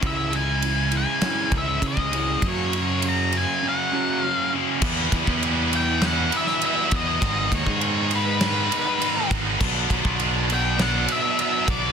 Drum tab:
CC |----------------|----------------|x---------------|----------------|
RD |x-x-x-x-x-x-x-x-|x-x-x-x---------|--x-x-x-x-x-x-x-|x-x-x-x-x-x-x-x-|
SD |--------o-------|----------------|--------o--o----|--------o-------|
BD |o---------o-oo--|o---------------|o-oo----------o-|o-oo----------o-|

CC |x---------------|
RD |--x-x-x-x-x-x-x-|
SD |--------o-------|
BD |o-oo----------o-|